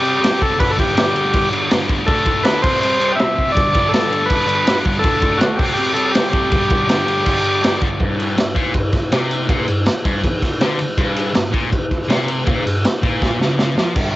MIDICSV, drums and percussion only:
0, 0, Header, 1, 2, 480
1, 0, Start_track
1, 0, Tempo, 371287
1, 773, Time_signature, 4, 2, 24, 8
1, 18303, End_track
2, 0, Start_track
2, 0, Title_t, "Drums"
2, 63, Note_on_c, 9, 49, 62
2, 192, Note_off_c, 9, 49, 0
2, 308, Note_on_c, 9, 49, 93
2, 317, Note_on_c, 9, 38, 113
2, 437, Note_off_c, 9, 49, 0
2, 447, Note_off_c, 9, 38, 0
2, 540, Note_on_c, 9, 36, 89
2, 547, Note_on_c, 9, 49, 71
2, 670, Note_off_c, 9, 36, 0
2, 676, Note_off_c, 9, 49, 0
2, 777, Note_on_c, 9, 49, 95
2, 778, Note_on_c, 9, 36, 111
2, 906, Note_off_c, 9, 49, 0
2, 907, Note_off_c, 9, 36, 0
2, 1018, Note_on_c, 9, 36, 97
2, 1021, Note_on_c, 9, 49, 72
2, 1147, Note_off_c, 9, 36, 0
2, 1151, Note_off_c, 9, 49, 0
2, 1255, Note_on_c, 9, 49, 87
2, 1264, Note_on_c, 9, 38, 115
2, 1384, Note_off_c, 9, 49, 0
2, 1393, Note_off_c, 9, 38, 0
2, 1495, Note_on_c, 9, 49, 67
2, 1624, Note_off_c, 9, 49, 0
2, 1725, Note_on_c, 9, 49, 83
2, 1731, Note_on_c, 9, 36, 93
2, 1854, Note_off_c, 9, 49, 0
2, 1861, Note_off_c, 9, 36, 0
2, 1974, Note_on_c, 9, 49, 63
2, 2104, Note_off_c, 9, 49, 0
2, 2208, Note_on_c, 9, 49, 85
2, 2217, Note_on_c, 9, 38, 120
2, 2337, Note_off_c, 9, 49, 0
2, 2346, Note_off_c, 9, 38, 0
2, 2444, Note_on_c, 9, 49, 67
2, 2448, Note_on_c, 9, 36, 87
2, 2573, Note_off_c, 9, 49, 0
2, 2577, Note_off_c, 9, 36, 0
2, 2683, Note_on_c, 9, 49, 82
2, 2687, Note_on_c, 9, 36, 115
2, 2812, Note_off_c, 9, 49, 0
2, 2816, Note_off_c, 9, 36, 0
2, 2916, Note_on_c, 9, 49, 65
2, 2924, Note_on_c, 9, 36, 91
2, 3045, Note_off_c, 9, 49, 0
2, 3054, Note_off_c, 9, 36, 0
2, 3162, Note_on_c, 9, 49, 84
2, 3171, Note_on_c, 9, 38, 114
2, 3291, Note_off_c, 9, 49, 0
2, 3300, Note_off_c, 9, 38, 0
2, 3408, Note_on_c, 9, 49, 103
2, 3411, Note_on_c, 9, 36, 107
2, 3538, Note_off_c, 9, 49, 0
2, 3540, Note_off_c, 9, 36, 0
2, 3660, Note_on_c, 9, 49, 77
2, 3789, Note_off_c, 9, 49, 0
2, 3893, Note_on_c, 9, 49, 62
2, 4023, Note_off_c, 9, 49, 0
2, 4128, Note_on_c, 9, 49, 96
2, 4137, Note_on_c, 9, 38, 123
2, 4257, Note_off_c, 9, 49, 0
2, 4266, Note_off_c, 9, 38, 0
2, 4375, Note_on_c, 9, 36, 87
2, 4382, Note_on_c, 9, 49, 66
2, 4505, Note_off_c, 9, 36, 0
2, 4511, Note_off_c, 9, 49, 0
2, 4612, Note_on_c, 9, 36, 112
2, 4614, Note_on_c, 9, 49, 83
2, 4742, Note_off_c, 9, 36, 0
2, 4744, Note_off_c, 9, 49, 0
2, 4841, Note_on_c, 9, 49, 73
2, 4849, Note_on_c, 9, 36, 100
2, 4971, Note_off_c, 9, 49, 0
2, 4978, Note_off_c, 9, 36, 0
2, 5088, Note_on_c, 9, 49, 85
2, 5097, Note_on_c, 9, 38, 110
2, 5217, Note_off_c, 9, 49, 0
2, 5226, Note_off_c, 9, 38, 0
2, 5332, Note_on_c, 9, 49, 66
2, 5462, Note_off_c, 9, 49, 0
2, 5556, Note_on_c, 9, 49, 87
2, 5564, Note_on_c, 9, 36, 85
2, 5685, Note_off_c, 9, 49, 0
2, 5694, Note_off_c, 9, 36, 0
2, 5796, Note_on_c, 9, 49, 67
2, 5925, Note_off_c, 9, 49, 0
2, 6037, Note_on_c, 9, 49, 95
2, 6046, Note_on_c, 9, 38, 120
2, 6166, Note_off_c, 9, 49, 0
2, 6175, Note_off_c, 9, 38, 0
2, 6270, Note_on_c, 9, 49, 71
2, 6280, Note_on_c, 9, 36, 87
2, 6399, Note_off_c, 9, 49, 0
2, 6410, Note_off_c, 9, 36, 0
2, 6512, Note_on_c, 9, 49, 80
2, 6518, Note_on_c, 9, 36, 115
2, 6642, Note_off_c, 9, 49, 0
2, 6648, Note_off_c, 9, 36, 0
2, 6748, Note_on_c, 9, 49, 68
2, 6755, Note_on_c, 9, 36, 94
2, 6877, Note_off_c, 9, 49, 0
2, 6884, Note_off_c, 9, 36, 0
2, 6991, Note_on_c, 9, 49, 83
2, 7000, Note_on_c, 9, 38, 114
2, 7120, Note_off_c, 9, 49, 0
2, 7129, Note_off_c, 9, 38, 0
2, 7229, Note_on_c, 9, 49, 98
2, 7233, Note_on_c, 9, 36, 117
2, 7358, Note_off_c, 9, 49, 0
2, 7362, Note_off_c, 9, 36, 0
2, 7466, Note_on_c, 9, 49, 82
2, 7596, Note_off_c, 9, 49, 0
2, 7710, Note_on_c, 9, 49, 65
2, 7839, Note_off_c, 9, 49, 0
2, 7947, Note_on_c, 9, 49, 89
2, 7956, Note_on_c, 9, 38, 120
2, 8077, Note_off_c, 9, 49, 0
2, 8086, Note_off_c, 9, 38, 0
2, 8183, Note_on_c, 9, 49, 71
2, 8190, Note_on_c, 9, 36, 94
2, 8312, Note_off_c, 9, 49, 0
2, 8319, Note_off_c, 9, 36, 0
2, 8424, Note_on_c, 9, 49, 89
2, 8431, Note_on_c, 9, 36, 115
2, 8554, Note_off_c, 9, 49, 0
2, 8560, Note_off_c, 9, 36, 0
2, 8664, Note_on_c, 9, 49, 67
2, 8672, Note_on_c, 9, 36, 98
2, 8793, Note_off_c, 9, 49, 0
2, 8801, Note_off_c, 9, 36, 0
2, 8909, Note_on_c, 9, 49, 85
2, 8918, Note_on_c, 9, 38, 115
2, 9038, Note_off_c, 9, 49, 0
2, 9047, Note_off_c, 9, 38, 0
2, 9154, Note_on_c, 9, 49, 68
2, 9283, Note_off_c, 9, 49, 0
2, 9387, Note_on_c, 9, 49, 90
2, 9392, Note_on_c, 9, 36, 80
2, 9516, Note_off_c, 9, 49, 0
2, 9522, Note_off_c, 9, 36, 0
2, 9625, Note_on_c, 9, 49, 68
2, 9755, Note_off_c, 9, 49, 0
2, 9874, Note_on_c, 9, 49, 86
2, 9883, Note_on_c, 9, 38, 118
2, 10004, Note_off_c, 9, 49, 0
2, 10013, Note_off_c, 9, 38, 0
2, 10102, Note_on_c, 9, 49, 67
2, 10108, Note_on_c, 9, 36, 92
2, 10231, Note_off_c, 9, 49, 0
2, 10237, Note_off_c, 9, 36, 0
2, 10336, Note_on_c, 9, 51, 93
2, 10347, Note_on_c, 9, 36, 115
2, 10465, Note_off_c, 9, 51, 0
2, 10476, Note_off_c, 9, 36, 0
2, 10595, Note_on_c, 9, 51, 76
2, 10724, Note_off_c, 9, 51, 0
2, 10829, Note_on_c, 9, 51, 95
2, 10838, Note_on_c, 9, 38, 107
2, 10958, Note_off_c, 9, 51, 0
2, 10967, Note_off_c, 9, 38, 0
2, 11066, Note_on_c, 9, 36, 86
2, 11066, Note_on_c, 9, 51, 72
2, 11195, Note_off_c, 9, 36, 0
2, 11195, Note_off_c, 9, 51, 0
2, 11298, Note_on_c, 9, 51, 99
2, 11304, Note_on_c, 9, 36, 82
2, 11428, Note_off_c, 9, 51, 0
2, 11433, Note_off_c, 9, 36, 0
2, 11537, Note_on_c, 9, 51, 67
2, 11545, Note_on_c, 9, 36, 88
2, 11546, Note_on_c, 9, 38, 30
2, 11667, Note_off_c, 9, 51, 0
2, 11674, Note_off_c, 9, 36, 0
2, 11676, Note_off_c, 9, 38, 0
2, 11787, Note_on_c, 9, 51, 105
2, 11796, Note_on_c, 9, 38, 116
2, 11916, Note_off_c, 9, 51, 0
2, 11925, Note_off_c, 9, 38, 0
2, 12034, Note_on_c, 9, 51, 76
2, 12163, Note_off_c, 9, 51, 0
2, 12269, Note_on_c, 9, 36, 108
2, 12269, Note_on_c, 9, 51, 104
2, 12398, Note_off_c, 9, 36, 0
2, 12399, Note_off_c, 9, 51, 0
2, 12509, Note_on_c, 9, 51, 81
2, 12638, Note_off_c, 9, 51, 0
2, 12745, Note_on_c, 9, 51, 98
2, 12754, Note_on_c, 9, 38, 108
2, 12874, Note_off_c, 9, 51, 0
2, 12883, Note_off_c, 9, 38, 0
2, 12992, Note_on_c, 9, 51, 86
2, 12993, Note_on_c, 9, 36, 87
2, 13121, Note_off_c, 9, 51, 0
2, 13123, Note_off_c, 9, 36, 0
2, 13232, Note_on_c, 9, 36, 81
2, 13236, Note_on_c, 9, 51, 101
2, 13362, Note_off_c, 9, 36, 0
2, 13365, Note_off_c, 9, 51, 0
2, 13474, Note_on_c, 9, 36, 80
2, 13477, Note_on_c, 9, 51, 79
2, 13486, Note_on_c, 9, 38, 34
2, 13603, Note_off_c, 9, 36, 0
2, 13607, Note_off_c, 9, 51, 0
2, 13616, Note_off_c, 9, 38, 0
2, 13711, Note_on_c, 9, 51, 104
2, 13720, Note_on_c, 9, 38, 113
2, 13840, Note_off_c, 9, 51, 0
2, 13850, Note_off_c, 9, 38, 0
2, 13948, Note_on_c, 9, 51, 82
2, 14077, Note_off_c, 9, 51, 0
2, 14194, Note_on_c, 9, 36, 103
2, 14200, Note_on_c, 9, 51, 102
2, 14323, Note_off_c, 9, 36, 0
2, 14329, Note_off_c, 9, 51, 0
2, 14435, Note_on_c, 9, 51, 77
2, 14564, Note_off_c, 9, 51, 0
2, 14671, Note_on_c, 9, 51, 94
2, 14680, Note_on_c, 9, 38, 113
2, 14800, Note_off_c, 9, 51, 0
2, 14809, Note_off_c, 9, 38, 0
2, 14917, Note_on_c, 9, 36, 86
2, 14919, Note_on_c, 9, 51, 70
2, 15046, Note_off_c, 9, 36, 0
2, 15049, Note_off_c, 9, 51, 0
2, 15160, Note_on_c, 9, 36, 83
2, 15162, Note_on_c, 9, 51, 91
2, 15289, Note_off_c, 9, 36, 0
2, 15291, Note_off_c, 9, 51, 0
2, 15400, Note_on_c, 9, 36, 83
2, 15400, Note_on_c, 9, 51, 73
2, 15409, Note_on_c, 9, 38, 33
2, 15530, Note_off_c, 9, 36, 0
2, 15530, Note_off_c, 9, 51, 0
2, 15539, Note_off_c, 9, 38, 0
2, 15642, Note_on_c, 9, 51, 97
2, 15651, Note_on_c, 9, 38, 111
2, 15771, Note_off_c, 9, 51, 0
2, 15780, Note_off_c, 9, 38, 0
2, 15878, Note_on_c, 9, 51, 79
2, 16008, Note_off_c, 9, 51, 0
2, 16116, Note_on_c, 9, 51, 99
2, 16125, Note_on_c, 9, 36, 120
2, 16245, Note_off_c, 9, 51, 0
2, 16254, Note_off_c, 9, 36, 0
2, 16377, Note_on_c, 9, 51, 83
2, 16507, Note_off_c, 9, 51, 0
2, 16608, Note_on_c, 9, 51, 97
2, 16617, Note_on_c, 9, 38, 115
2, 16737, Note_off_c, 9, 51, 0
2, 16746, Note_off_c, 9, 38, 0
2, 16847, Note_on_c, 9, 51, 75
2, 16848, Note_on_c, 9, 36, 86
2, 16976, Note_off_c, 9, 51, 0
2, 16978, Note_off_c, 9, 36, 0
2, 17091, Note_on_c, 9, 36, 86
2, 17099, Note_on_c, 9, 38, 62
2, 17220, Note_off_c, 9, 36, 0
2, 17228, Note_off_c, 9, 38, 0
2, 17343, Note_on_c, 9, 38, 69
2, 17472, Note_off_c, 9, 38, 0
2, 17570, Note_on_c, 9, 38, 98
2, 17699, Note_off_c, 9, 38, 0
2, 17813, Note_on_c, 9, 38, 90
2, 17942, Note_off_c, 9, 38, 0
2, 18042, Note_on_c, 9, 57, 93
2, 18048, Note_on_c, 9, 36, 102
2, 18171, Note_off_c, 9, 57, 0
2, 18177, Note_off_c, 9, 36, 0
2, 18303, End_track
0, 0, End_of_file